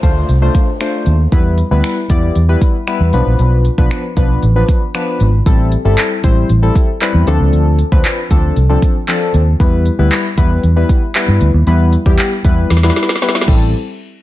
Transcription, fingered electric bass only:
0.03 D2
0.29 C2
1.06 D#2
1.32 E2
1.71 D2
2.10 E2
2.36 E2
3.00 E2
3.13 B1
3.26 A#1
3.39 B1
3.78 B1
4.17 B1
4.43 A1
5.20 G#1
5.46 A1
5.85 G1
6.24 A1
6.50 A1
7.14 E2
7.27 D2
7.40 C#2
7.53 D2
7.92 D2
8.31 D2
8.57 C2
9.34 D#2
9.60 E2
9.99 D2
10.38 E2
10.64 E2
11.28 G2
11.41 D2
11.54 D#2
11.67 E2
12.06 E2
12.45 E2
12.70 E2
13.48 A1

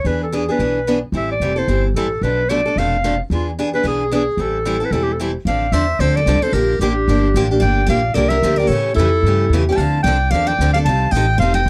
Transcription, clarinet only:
0.07 B4
0.23 A4
0.35 G#4
0.51 B4
1.17 E5
1.32 D5
1.58 C5
1.96 A4
2.24 B4
2.50 D5
2.78 F5
3.33 F4
3.75 B4
3.87 G#4
4.15 G#4
4.42 A4
4.85 B4
4.92 A4
5.03 G4
5.12 A4
5.47 F5
5.72 E5
6.00 C5
6.16 D5
6.43 C5
6.53 A#4
6.81 G4
7.61 G5
7.89 F5
8.14 D5
8.29 E5
8.58 D5
8.68 C#5
8.96 A4
9.72 G5
9.76 A5
10.03 G5
10.31 F5
10.47 G5
10.73 F5
10.85 A5
11.12 G5
11.39 F5
11.55 G5

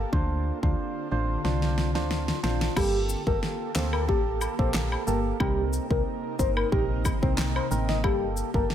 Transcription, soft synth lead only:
2.77 G4
3.27 A#4
3.76 C5
3.93 A#4
4.08 G4
4.59 C5
5.07 A#4
5.40 G4
5.91 A#4
6.39 C5
6.57 A#4
6.72 G4
7.22 C5
7.56 C5
7.89 D#5
8.04 G4
8.55 A#4

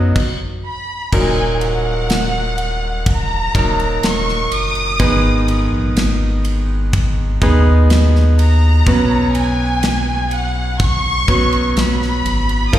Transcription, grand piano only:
Already playing: F#3 B3 D#4 F#4
1.13 A#2 F#3 A#3 D#4 F#4 A#4
3.54 F#3 A#3 D#4 F#4 A#4
5.00 G#2 D#3 G#3 B3 D#4 G#4 B4
7.42 G#3 B3 D#4 G#4 B4
8.87 B2 F#3 B3 C#4 F#4 B4
11.28 F#3 B3 C#4 F#4 B4
12.73 A#2 F3 A#3 D#4 F4 A#4

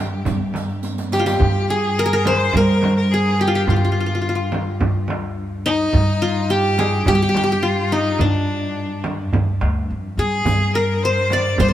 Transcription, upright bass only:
Already playing: G3
0.28 G2
1.41 G2
2.54 G3
3.68 G2
4.81 D2
5.94 G2
7.07 G3
8.20 G2
9.32 D2
9.61 D2
9.90 F2
10.17 G2
10.46 G2
11.60 G3

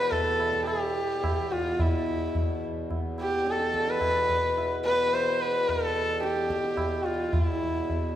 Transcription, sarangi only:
Already playing: B4
0.11 A4
0.65 G4
1.53 F4
1.82 E4
3.21 G4
3.50 A4
3.90 B4
4.85 B4
5.14 C5
5.41 B4
5.70 A4
6.23 G4
7.05 F4
7.33 F4
7.44 E4

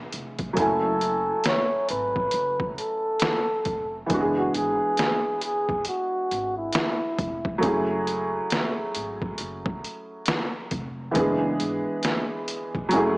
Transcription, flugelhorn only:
0.59 A4
1.47 C#5
1.90 B4
2.79 A4
4.38 F#4
4.56 G#4
5.44 G#4
5.88 F#4
6.57 E4

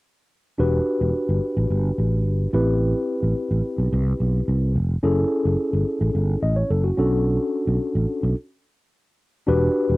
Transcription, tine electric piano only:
0.58 D4 F#4 G4 B4
2.53 C4 E4 G4 B4
5.03 C#4 E4 G#4 A4
6.43 D#5
6.56 C#5
6.70 A4
6.84 F#4
6.97 C#4 D4 F#4 A4
9.47 D4 F#4 G4 B4

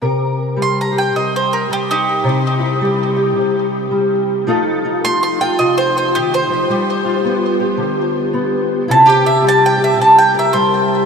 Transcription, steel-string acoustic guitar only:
0.02 C3 A#4
0.56 G3
0.92 G4
1.14 C3
1.70 G3
2.24 C3 E4
2.59 E4
2.81 G3
3.16 G4
3.36 C3
3.91 G3
4.47 F3 A3 D#4 F4 A4
4.85 D#4
5.04 A3
5.40 F4
5.59 C3
6.16 D#3
6.49 F3
6.70 G3 G4
7.05 F4
7.24 B3
7.60 G4
7.77 D3
8.33 B3
8.88 C3 E4
9.05 G4
9.23 E4
9.42 G3
9.78 G4
9.98 C3
10.34 A#4
10.54 G3

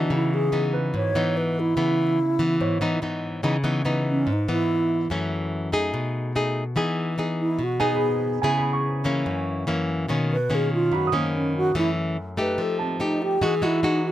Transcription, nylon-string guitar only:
Already playing: E3 B3 D#4
0.10 C#3
0.52 E3 B3 D#4
0.94 G#2
1.15 E3 B3 D#4
1.77 C#3 E3 B3
2.39 E3 B3
2.61 G#2
2.81 E3 B3 D#4
3.02 E3 B3 D#4
3.43 C#3 E3 B3 D#4
3.64 E3 B3 D#4
3.85 E3 B3 D#4
4.27 G#2
4.48 E3 B3
5.10 F#2 E3 A3 C#4
5.72 A3 D#4 G#4
5.94 B2
6.35 A3 D#4 G#4
6.76 E3 B3 D#4 G#4
7.18 B3 D#4 G#4
7.59 B2
7.80 B3 D#4 G#4
8.43 C#3 B3 E4 G#4
9.04 E3 A#3 C#4
9.26 F#2
9.67 E3 A#3 C#4
10.09 B2 D#3 A#3 C#4
10.50 D#3 A#3 C#4
10.92 F#2
11.12 D#3 A#3 C#4
11.75 F#2 E3 A3 C#4
12.37 A3 D#4 G4
12.58 F3
13.00 A3 D#4 G4
13.41 E3 G#3 D#4 F#4
13.62 G#3 D#4 F#4
13.83 G#3 D#4 F#4

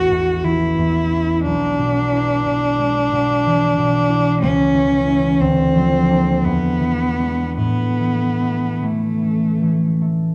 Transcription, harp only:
Already playing: A1 A3 C#4
0.11 E2
0.44 E3
0.78 E2
1.12 C#4
1.45 B1
1.78 B2
2.13 E4
2.46 B2
2.79 G#3
3.12 B2
3.46 E3
3.78 B2
4.09 E4
4.42 C#2
4.74 E3
5.07 A3 E4
5.41 D2
5.75 F3
6.10 A#3 D4
6.45 E2
6.80 E3
7.19 G#3 D4
7.57 A2
7.99 E3
8.41 A3
8.82 E3
9.22 C#4
9.61 E3
10.01 A3

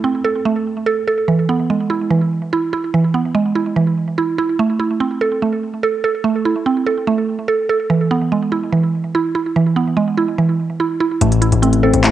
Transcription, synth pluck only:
Already playing: A3 E4 A4
0.04 C4
0.24 A4
0.45 A3
0.86 A4
1.07 A4
1.28 E3
1.49 B3
1.70 G#3
1.90 E4
2.10 E3
2.53 E4
2.73 E4
2.94 E3
3.14 B3
3.35 G#3
3.55 E4
3.76 E3
4.18 E4
4.38 E4
4.59 A3
4.79 E4
5.00 C4
5.21 A4
5.42 A3
5.83 A4
6.04 A4
6.24 A3
6.45 E4
6.66 C4
6.87 A4
7.07 A3
7.48 A4
7.70 A4
7.90 E3
8.11 B3
8.32 G#3
8.52 E4
8.72 E3
9.15 E4
9.35 E4
9.56 E3
9.76 B3
9.97 G#3
10.18 E4
10.38 E3
10.80 E4
11.00 E4
11.21 A3
11.42 E4
11.62 C4
11.83 A4
12.04 A3

